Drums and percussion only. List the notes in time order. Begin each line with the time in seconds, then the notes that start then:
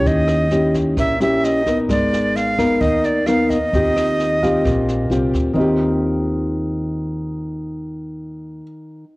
0.06 kick, snare
0.28 cross-stick, snare
0.51 snare
0.74 kick, snare
0.97 kick, cross-stick, snare
1.21 snare
1.44 snare
1.66 kick, snare
1.89 kick, cross-stick, snare
2.13 snare
2.36 snare
2.58 kick, cross-stick, snare
2.81 kick, snare
3.04 snare
3.26 cross-stick, snare
3.50 kick, snare
3.73 kick, snare
3.97 cross-stick, snare
4.20 snare
4.42 kick, snare
4.65 kick, cross-stick, snare
4.88 snare
5.11 snare
5.34 kick, snare